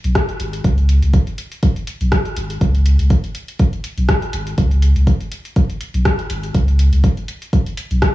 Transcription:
0.04 B1, closed hi-hat
0.15 kick, cross-stick, closed hi-hat
0.29 closed hi-hat
0.40 G#1, closed hi-hat
0.53 closed hi-hat
0.64 C#2, kick, closed hi-hat
0.78 closed hi-hat
0.89 closed hi-hat
1.02 C#2, closed hi-hat
1.14 kick, closed hi-hat
1.27 closed hi-hat
1.38 closed hi-hat
1.52 closed hi-hat
1.63 kick, closed hi-hat
1.76 closed hi-hat
1.87 closed hi-hat
2.01 B1, closed hi-hat
2.12 kick, cross-stick, closed hi-hat
2.25 closed hi-hat
2.36 G#1, closed hi-hat
2.50 closed hi-hat
2.61 C#2, kick, closed hi-hat
2.75 closed hi-hat
2.86 closed hi-hat
2.99 C#2, closed hi-hat
3.10 kick, closed hi-hat
3.24 closed hi-hat
3.35 closed hi-hat
3.48 closed hi-hat
3.59 kick, closed hi-hat
3.73 closed hi-hat
3.84 closed hi-hat
3.98 B1, closed hi-hat
4.09 kick, cross-stick, closed hi-hat
4.22 closed hi-hat
4.33 G#1, closed hi-hat
4.47 closed hi-hat
4.58 C#2, kick, closed hi-hat
4.71 closed hi-hat
4.82 closed hi-hat
4.96 C#2, closed hi-hat
5.07 kick, closed hi-hat
5.20 closed hi-hat
5.32 closed hi-hat
5.45 closed hi-hat
5.56 kick, closed hi-hat
5.70 closed hi-hat
5.81 closed hi-hat
5.94 B1, closed hi-hat
6.05 kick, cross-stick, closed hi-hat
6.19 closed hi-hat
6.30 G#1, closed hi-hat
6.43 closed hi-hat
6.55 C#2, kick, closed hi-hat
6.68 closed hi-hat
6.79 closed hi-hat
6.93 C#2, closed hi-hat
7.04 kick, closed hi-hat
7.17 closed hi-hat
7.28 closed hi-hat
7.42 closed hi-hat
7.53 kick, closed hi-hat
7.66 closed hi-hat
7.77 closed hi-hat
7.91 B1, closed hi-hat
8.02 kick, cross-stick, closed hi-hat

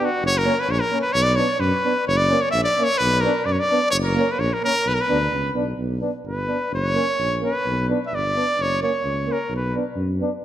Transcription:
0.05 F#4
0.22 F#1 C#5
0.38 A#4
0.44 A#3 C#4
0.60 B4
0.68 A#1 C#5
0.80 A#4
0.92 A#3 C#4
1.02 B4
1.12 B1 C#5
1.23 D5
1.36 B3 D4 C#5
1.60 F#2 B4
1.84 B3 D4
2.07 F#1 C#5
2.17 D5
2.29 A#3 C#4
2.42 C#5
2.51 A#1 E5
2.64 D5
2.78 A#3 C#4
2.84 C#5
2.98 B1 B4
3.21 B3 D4 A#4
3.45 F#2 D5
3.52 C#5
3.60 D5
3.70 B3 D4
3.91 F#1 C#5
4.04 A#4
4.13 A#3 C#4
4.32 B4
4.38 A#1 C#5
4.53 A#4
4.62 A#3 C#4 A#4
4.85 B1 B4
4.94 A#4
5.01 B4
5.09 D2 B3 D4
5.32 C#2
5.53 B1 B3 D4
5.77 B1
6.01 B3 D4
6.24 G1 B4
6.47 B3 D4
6.71 F#1 C#5
6.95 A#3 C#4
7.19 A#1
7.41 A#3 C#4
7.45 B4
7.66 B1
7.89 B3 D4
8.07 E5
8.11 G1 D5
8.36 B3 D4
8.58 F#1 C#5
8.82 A#3 C#4 C#5
9.03 C#2
9.26 A#3 C#4
9.32 A#4
9.49 B1
9.56 B4
9.75 B3 D4
9.96 F#2
10.19 B3 D4

